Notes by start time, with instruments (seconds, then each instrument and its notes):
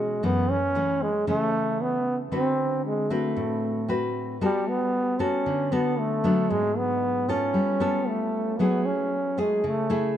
Already playing: nylon-string guitar B2 G#3 C#4 F#4, trombone G#3
0.23 nylon-string guitar F#2 E3 A3 C#4, trombone B3
0.50 trombone C#4
0.75 nylon-string guitar E3 A3 C#4
1.02 trombone G#3
1.27 nylon-string guitar C#3 E3 A3 C#4, trombone A3
1.81 trombone B3
2.32 nylon-string guitar D3 C4 F#4 B4, trombone C4
2.86 trombone G#3
3.10 trombone A3, nylon-string guitar C4 F#4 B4
3.37 nylon-string guitar A2
3.88 nylon-string guitar C4 F#4 B4
4.41 nylon-string guitar G3 B3 F#4 A4, trombone G3
4.68 trombone B3
5.19 nylon-string guitar B3 F#4 A4, trombone C#4
5.46 nylon-string guitar D3
5.72 nylon-string guitar B3 F#4 A4, trombone B3
5.99 trombone A3
6.24 nylon-string guitar F#3 B3 D4
6.50 nylon-string guitar G#2, trombone G#3
6.78 trombone B3
7.28 nylon-string guitar B3 F4 A4, trombone C#4
7.54 nylon-string guitar G3
7.80 nylon-string guitar B3 F4 A4
8.08 trombone A3
8.59 nylon-string guitar F#3 A3 E4 G#4, trombone B3
8.86 trombone C#4
9.38 trombone G#3, nylon-string guitar A3 E4 G#4
9.64 nylon-string guitar C#3, trombone A3
9.90 nylon-string guitar A3 E4 G#4